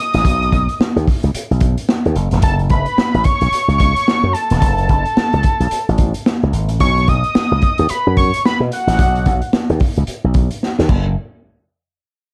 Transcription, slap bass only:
0.14 0.25 A1 medium
0.25 0.49 B1 medium
0.52 0.67 B1 medium
0.80 muted slap bass stroke soft
0.96 1.06 D#2 medium
1.23 1.33 C#2 medium
1.35 muted slap bass stroke soft
1.51 1.75 B1 medium
2.06 2.15 D#2 medium
2.16 2.30 F#1 medium
2.32 2.42 E1 medium
2.43 2.67 F#1 loud
2.70 2.85 F#1 loud
2.98 muted slap bass stroke medium
3.14 3.24 A1 medium
3.41 3.51 B1 medium
3.52 muted slap bass stroke soft
3.68 3.92 C#2 medium
4.23 4.33 F#2 medium
4.51 4.62 E1 medium
4.62 4.86 F#1 loud
4.89 5.04 F#1 medium
5.17 muted slap bass stroke soft
5.33 5.43 C#2 medium
5.60 5.70 B1 medium
5.72 muted slap bass stroke soft
5.89 6.12 A1 medium
6.43 6.52 C#2 medium
6.53 6.69 G#1 medium
6.69 6.79 A1 medium
6.80 7.04 B1 loud
7.08 7.22 B1 medium
7.36 muted slap bass stroke soft
7.52 7.61 C#2 loud
7.79 7.88 D#2 medium
7.91 muted slap bass stroke medium
8.07 8.30 F#2 medium
8.60 8.70 B2 medium
8.87 8.99 A1 medium
8.99 9.23 B1 loud
9.26 9.40 B1 medium
9.53 muted slap bass stroke soft
9.70 9.79 D#2 medium
9.97 10.07 C#2 medium
10.08 muted slap bass stroke medium
10.24 10.48 B1 medium
10.79 10.88 D#2 medium
10.89 11.15 F#1 loud

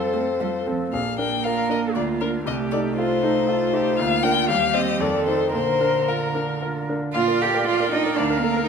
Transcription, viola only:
0.00 0.65 A4 soft
1.45 1.97 A#4 soft
1.95 2.45 F4 soft
2.46 2.95 G4 soft
2.96 3.24 F4 soft
3.22 3.49 D#4 soft
3.47 3.75 F4 soft
3.73 3.97 G4 soft
3.97 4.50 F4 medium
4.48 5.02 G4 medium
5.01 5.53 A4 soft
5.54 6.86 A#4 soft
7.16 8.19 D5 soft
8.18 8.68 A#4 soft

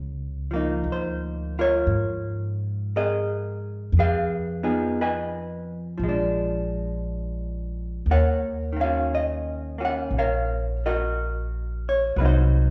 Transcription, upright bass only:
0.00 0.80 C#2 medium
0.84 1.83 D2 medium
1.87 3.89 G#2 medium
3.92 5.94 F2 medium
5.99 8.02 A#1 medium
8.06 10.08 D#2 medium
10.11 12.12 A#1 medium
12.16 12.70 C2 medium

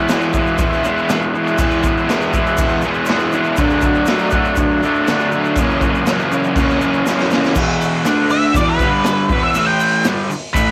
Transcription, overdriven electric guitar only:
0.00 0.11 B3 medium
0.00 0.11 E4 medium
0.10 0.59 E3 medium
0.10 0.38 G#3 medium
0.10 0.36 B3 loud
0.10 0.34 E4 medium
0.35 0.59 G#3 medium
0.35 0.60 B3 medium
0.35 0.61 E4 medium
0.60 0.86 E3 medium
0.60 0.85 G#3 medium
0.60 0.85 B3 medium
0.60 0.83 E4 medium
0.85 1.09 E3 medium
0.85 1.10 G#3 medium
0.85 1.10 B3 medium
0.85 1.11 E4 medium
1.10 1.58 E3 medium
1.10 1.36 G#3 medium
1.10 1.34 B3 medium
1.10 1.33 E4 medium
1.34 1.59 G#3 medium
1.34 1.60 B3 medium
1.34 1.61 E4 medium
1.59 2.07 E3 medium
1.59 1.85 G#3 medium
1.59 1.84 B3 medium
1.59 1.82 E4 medium
1.83 2.09 G#3 medium
1.83 2.09 B3 medium
1.83 2.11 E4 medium
2.08 2.58 E3 medium
2.08 2.35 G#3 loud
2.08 2.34 B3 loud
2.08 2.33 E4 loud
2.34 2.59 G#3 medium
2.34 2.60 B3 medium
2.34 2.60 E4 medium
2.59 2.85 E3 medium
2.59 2.85 G#3 medium
2.59 2.84 B3 medium
2.59 2.83 E4 medium
2.84 3.07 E3 medium
2.84 3.08 G#3 medium
2.84 3.09 B3 medium
2.84 3.10 E4 medium
3.08 3.57 E3 medium
3.08 3.34 G#3 medium
3.08 3.33 B3 medium
3.08 3.32 E4 medium
3.33 3.58 G#3 medium
3.33 3.57 B3 medium
3.33 3.57 E4 medium
3.58 4.07 D3 medium
3.58 3.85 F#3 medium
3.58 3.83 A3 medium
3.58 3.81 D4 loud
3.82 4.08 F#3 medium
3.82 4.09 A3 medium
3.82 4.09 D4 medium
4.08 4.56 D3 medium
4.08 4.35 F#3 loud
4.08 4.33 A3 loud
4.08 4.31 D4 loud
4.32 4.58 F#3 medium
4.32 4.59 A3 medium
4.32 4.59 D4 medium
4.57 4.84 D3 medium
4.57 4.83 F#3 medium
4.57 4.82 A3 medium
4.57 4.81 D4 medium
4.82 5.07 D3 medium
4.82 5.07 F#3 medium
4.82 5.08 A3 medium
4.82 5.09 D4 medium
5.08 5.56 D3 medium
5.08 5.35 F#3 medium
5.08 5.33 A3 medium
5.08 5.32 D4 medium
5.33 5.58 F#3 medium
5.33 5.57 A3 medium
5.33 5.56 D4 medium
5.57 6.06 F#2 medium
5.57 6.07 C#3 medium
5.57 5.84 E3 medium
5.57 5.83 A#3 loud
5.57 5.81 C#4 medium
5.83 6.07 E3 medium
5.83 6.08 A#3 medium
5.83 6.08 C#4 medium
6.07 6.57 F#2 loud
6.07 6.56 C#3 loud
6.07 6.33 E3 medium
6.07 6.32 A#3 medium
6.07 6.31 C#4 loud
6.32 6.57 E3 medium
6.32 6.58 A#3 medium
6.32 6.59 C#4 medium
6.57 6.82 C#3 medium
6.57 6.82 E3 medium
6.57 6.81 A#3 medium
6.57 6.80 C#4 medium
6.81 7.33 F#2 medium
6.81 7.06 C#3 medium
6.81 7.07 E3 medium
6.81 7.08 A#3 medium
6.81 7.08 C#4 loud
7.07 7.55 C#3 medium
7.07 7.33 E3 medium
7.07 7.32 A#3 medium
7.07 7.30 C#4 medium
7.31 7.56 E3 medium
7.31 7.55 A#3 medium
7.31 7.55 C#4 medium
7.56 8.05 E2 medium
7.56 8.05 B2 medium
7.56 8.06 E3 loud
8.05 8.54 D3 medium
8.05 8.55 A3 loud
8.05 8.55 D4 loud
8.56 8.80 E2 loud
8.56 8.81 B2 medium
8.56 8.81 E3 loud
8.82 9.30 G2 medium
8.82 9.31 D3 loud
8.82 9.30 G3 loud
9.31 9.55 E2 loud
9.31 9.55 B2 loud
9.31 9.54 E3 loud
9.55 10.04 A2 medium
9.55 10.04 E3 medium
9.55 10.04 A3 medium
10.05 10.29 G2 medium
10.05 10.29 D3 medium
10.05 10.29 G3 medium
10.30 muted overdriven electric guitar stroke medium
10.54 10.71 A2 loud
10.54 10.71 E3 loud
10.54 10.71 A3 loud

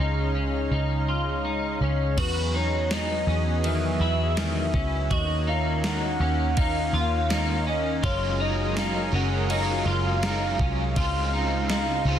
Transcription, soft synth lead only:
1.82 2.20 C#5 medium
2.18 2.58 B4 loud
2.56 2.95 C#5 medium
2.93 3.68 D#5 loud
3.66 4.75 E5 loud
4.76 5.14 E5 loud
5.13 5.50 D#5 loud
5.49 5.88 F5 loud
5.87 6.59 F#5 loud
6.59 7.64 F5 loud
7.69 8.06 D#5 loud
8.05 8.41 C#5 loud
8.41 8.80 D#5 loud
8.78 9.16 F5 loud
9.15 9.53 F#5 loud
9.51 10.97 F5 loud
10.98 12.19 F5 loud

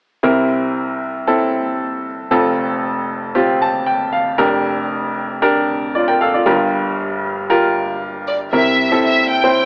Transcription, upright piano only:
0.23 2.27 C2 medium
0.23 2.27 C3 soft
0.23 1.00 C4 medium
0.23 1.00 E4 medium
0.23 1.01 A#4 medium
1.27 2.04 C4 medium
1.27 2.05 E4 medium
1.27 2.04 A4 medium
2.31 4.34 F1 medium
2.31 4.34 F2 soft
2.31 3.08 C4 medium
2.31 3.08 F4 medium
2.31 3.08 A4 medium
3.35 4.12 C4 medium
3.35 4.12 F4 medium
3.35 4.12 G4 medium
3.62 3.85 A5 medium
3.87 4.11 G5 medium
4.13 4.37 F5 medium
4.38 6.42 F1 soft
4.38 6.42 F2 medium
4.38 5.15 D4 medium
4.38 5.15 G4 medium
4.38 5.15 A#4 medium
5.42 6.19 D4 medium
5.42 5.94 G4 medium
5.42 5.94 A#4 medium
5.95 6.07 F4 soft
5.95 6.07 D5 medium
6.08 6.20 A#4 soft
6.08 6.20 G5 medium
6.21 6.33 A4 soft
6.21 6.33 F5 medium
6.34 6.44 F4 soft
6.34 6.58 D5 soft
6.46 8.49 G1 medium
6.46 8.49 G2 medium
6.46 7.23 F4 medium
6.46 7.23 G4 medium
6.46 7.23 A#4 medium
7.50 8.27 F4 medium
7.50 8.27 G4 medium
7.50 8.27 A#4 medium
8.53 9.65 C2 soft
8.53 9.65 C3 soft
8.53 8.82 C4 soft
8.53 8.82 E4 soft
8.53 8.82 A#4 medium
8.91 9.31 C4 medium
8.91 9.30 E4 medium
8.91 9.31 A4 medium
9.44 9.63 C4 medium
9.44 9.63 E4 medium
9.44 9.63 C5 medium

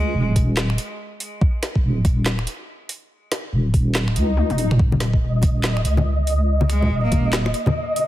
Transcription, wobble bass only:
0.00 0.14 C#2 medium
0.15 0.35 D#1 medium
0.36 0.77 D#1 loud
1.84 2.04 D#1 medium
2.05 2.46 D#1 loud
3.53 3.73 D#1 medium
3.74 4.17 D#1 loud
4.16 4.52 C#2 loud
4.50 4.78 D#1 medium
4.79 5.42 D#1 loud
5.43 5.84 D#1 loud
5.85 6.90 C#2 medium
6.91 7.11 D#1 medium
7.12 7.53 D#1 loud

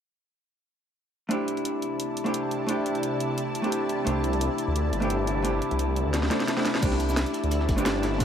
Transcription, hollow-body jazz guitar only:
1.29 2.23 A3 medium
1.29 2.24 C4 medium
1.29 2.24 D4 medium
1.29 2.25 E4 medium
1.33 2.25 G4 medium
2.24 2.65 A3 medium
2.24 2.66 C4 medium
2.24 2.67 D4 medium
2.24 2.67 E4 medium
2.28 2.68 G4 medium
2.67 3.61 A3 medium
2.67 3.61 C4 medium
2.67 3.62 D4 medium
2.67 3.63 E4 medium
2.71 3.63 G4 medium
3.62 4.03 A3 medium
3.62 4.04 C4 medium
3.62 4.05 D4 medium
3.62 4.05 E4 medium
3.66 4.06 G4 medium
4.04 4.99 A3 medium
4.04 4.99 C4 medium
4.04 5.00 D4 medium
4.04 5.00 E4 medium
4.09 5.01 G4 medium
5.00 5.41 A3 medium
5.00 5.42 C4 medium
5.00 5.43 D4 medium
5.00 5.43 E4 medium
5.04 5.44 G4 medium
5.42 6.28 A3 medium
5.42 6.29 C4 medium
5.42 6.29 D4 medium
5.42 6.30 E4 medium
5.47 6.30 G4 loud
6.30 6.55 A3 medium
6.30 6.55 C4 medium
6.30 6.55 D4 medium
6.30 6.55 E4 medium
6.30 6.56 A4 loud
6.56 6.79 A3 medium
6.56 6.80 C4 medium
6.56 6.81 D4 medium
6.56 6.81 E4 medium
6.56 6.81 A4 loud
6.81 7.75 A3 medium
6.81 7.75 C4 medium
6.81 7.76 D4 medium
6.81 7.76 E4 medium
6.85 7.77 G4 loud
7.76 8.17 A3 medium
7.76 8.18 C4 medium
7.76 8.19 D4 medium
7.76 8.19 E4 medium
7.80 8.20 G4 loud
8.18 8.25 A3 medium
8.18 8.25 C4 medium
8.18 8.25 D4 medium
8.18 8.25 E4 medium

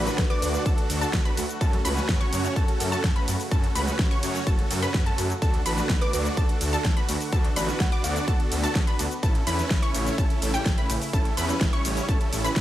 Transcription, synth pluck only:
0.00 0.27 B5 medium
0.30 0.63 D6 loud
0.66 0.99 A5 medium
1.01 1.15 A5 medium
1.25 1.38 B5 medium
1.61 1.81 A5 loud
1.85 2.18 B5 loud
2.21 2.53 C#6 medium
2.56 2.89 A5 medium
2.92 3.05 A5 medium
3.16 3.29 B5 medium
3.51 3.72 A5 loud
3.75 4.08 B5 medium
4.11 4.44 C#6 loud
4.47 4.80 A5 medium
4.82 5.03 B5 loud
5.06 5.19 A5 medium
5.42 5.62 A5 loud
5.66 5.99 B5 medium
6.02 6.34 D6 loud
6.37 6.70 A5 medium
6.73 6.86 A5 medium
6.97 7.10 B5 medium
7.32 7.53 A5 loud
7.56 7.89 B5 medium
7.92 8.25 D6 loud
8.28 8.61 A5 medium
8.63 8.77 A5 loud
8.87 9.00 B5 medium
9.23 9.43 A5 loud
9.47 9.80 B5 medium
9.82 10.15 C#6 loud
10.18 10.51 A5 medium
10.54 10.67 G5 loud
10.78 10.91 B5 medium
11.13 11.34 A5 loud
11.37 11.70 B5 loud
11.73 12.06 C#6 loud
12.09 12.41 A5 loud
12.44 12.61 B5 loud

